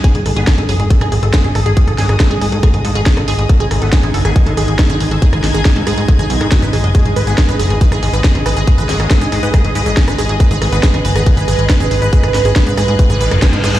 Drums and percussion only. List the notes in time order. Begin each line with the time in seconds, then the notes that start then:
0.04 kick, closed hi-hat
0.15 closed hi-hat
0.26 cross-stick, open hi-hat
0.36 closed hi-hat
0.47 kick, cross-stick, snare, closed hi-hat
0.58 closed hi-hat
0.69 open hi-hat
0.80 cross-stick, closed hi-hat
0.90 kick, closed hi-hat
1.01 cross-stick, closed hi-hat
1.12 open hi-hat
1.23 closed hi-hat
1.34 kick, cross-stick, snare, closed hi-hat
1.44 closed hi-hat
1.55 cross-stick, open hi-hat
1.66 closed hi-hat
1.77 kick, closed hi-hat
1.88 cross-stick, closed hi-hat
1.98 snare, open hi-hat
2.09 cross-stick, closed hi-hat
2.20 kick, snare, closed hi-hat
2.31 closed hi-hat
2.42 cross-stick, open hi-hat
2.52 closed hi-hat
2.63 kick, cross-stick, closed hi-hat
2.74 closed hi-hat
2.85 open hi-hat
2.95 cross-stick, closed hi-hat
3.06 kick, snare, closed hi-hat
3.17 cross-stick, closed hi-hat
3.28 open hi-hat
3.39 closed hi-hat
3.49 kick, cross-stick, closed hi-hat
3.60 closed hi-hat
3.71 cross-stick, open hi-hat
3.82 closed hi-hat
3.93 kick, snare, closed hi-hat
4.03 cross-stick, closed hi-hat
4.14 open hi-hat
4.25 cross-stick, closed hi-hat
4.36 kick, closed hi-hat
4.47 closed hi-hat
4.57 cross-stick, open hi-hat
4.68 closed hi-hat
4.79 kick, cross-stick, snare, closed hi-hat
4.90 closed hi-hat
5.00 open hi-hat
5.11 cross-stick, closed hi-hat
5.22 kick, closed hi-hat
5.33 cross-stick, closed hi-hat
5.44 snare, open hi-hat
5.54 closed hi-hat
5.65 kick, cross-stick, snare, closed hi-hat
5.76 closed hi-hat
5.87 cross-stick, open hi-hat
5.98 closed hi-hat
6.08 kick, closed hi-hat
6.19 cross-stick, closed hi-hat
6.30 open hi-hat
6.41 cross-stick, closed hi-hat
6.52 kick, snare, closed hi-hat
6.62 closed hi-hat
6.73 cross-stick, open hi-hat
6.84 closed hi-hat
6.95 kick, closed hi-hat
7.06 closed hi-hat
7.16 cross-stick, open hi-hat
7.27 closed hi-hat
7.38 kick, cross-stick, snare, closed hi-hat
7.49 closed hi-hat
7.59 open hi-hat
7.70 cross-stick, closed hi-hat
7.81 kick, closed hi-hat
7.92 cross-stick, closed hi-hat
8.03 open hi-hat
8.13 closed hi-hat
8.24 kick, cross-stick, snare, closed hi-hat
8.35 closed hi-hat
8.46 cross-stick, open hi-hat
8.57 closed hi-hat
8.67 kick, closed hi-hat
8.78 cross-stick, closed hi-hat
8.89 snare, open hi-hat
9.00 cross-stick, closed hi-hat
9.11 kick, snare, closed hi-hat
9.21 closed hi-hat
9.32 cross-stick, open hi-hat
9.43 closed hi-hat
9.54 kick, cross-stick, closed hi-hat
9.65 closed hi-hat
9.75 open hi-hat
9.86 cross-stick, closed hi-hat
9.97 kick, snare, closed hi-hat
10.08 cross-stick, closed hi-hat
10.18 open hi-hat
10.29 closed hi-hat
10.40 kick, cross-stick, closed hi-hat
10.51 closed hi-hat
10.62 cross-stick, open hi-hat
10.72 closed hi-hat
10.83 kick, snare, closed hi-hat
10.94 cross-stick, closed hi-hat
11.05 open hi-hat
11.16 cross-stick, closed hi-hat
11.26 kick, closed hi-hat
11.37 closed hi-hat
11.48 cross-stick, open hi-hat
11.59 closed hi-hat
11.70 kick, cross-stick, snare, closed hi-hat
11.80 closed hi-hat
11.91 open hi-hat
12.02 cross-stick, closed hi-hat
12.13 kick, closed hi-hat
12.23 cross-stick, closed hi-hat
12.34 snare, open hi-hat
12.45 closed hi-hat
12.56 kick, cross-stick, snare, closed hi-hat
12.67 closed hi-hat
12.77 cross-stick, open hi-hat
12.88 closed hi-hat
12.99 kick, closed hi-hat
13.10 cross-stick, closed hi-hat
13.21 open hi-hat
13.31 cross-stick, closed hi-hat
13.42 kick, snare, closed hi-hat
13.53 closed hi-hat
13.64 cross-stick, open hi-hat
13.75 closed hi-hat